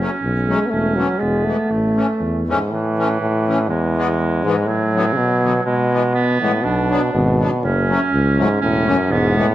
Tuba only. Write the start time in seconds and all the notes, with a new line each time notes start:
0.23 B1
0.72 E1
1.21 E1
1.70 A1
2.20 E2
6.65 B1
7.14 G#1
7.64 F#1
8.12 C#2
8.61 E1
9.09 E1